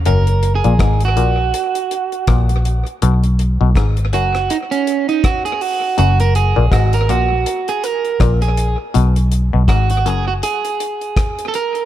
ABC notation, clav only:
X:1
M:4/4
L:1/16
Q:"Swing 16ths" 1/4=81
K:F#
V:1 name="Clav" clef=bass
F,,2 z A,, G,,2 A,,2 z4 A,,2 z2 | B,,2 z B,, G,,2 F,,2 z8 | F,,2 z A,, G,,2 A,,2 z4 A,,2 z2 | B,,2 z B,, G,,2 F,,2 z8 |]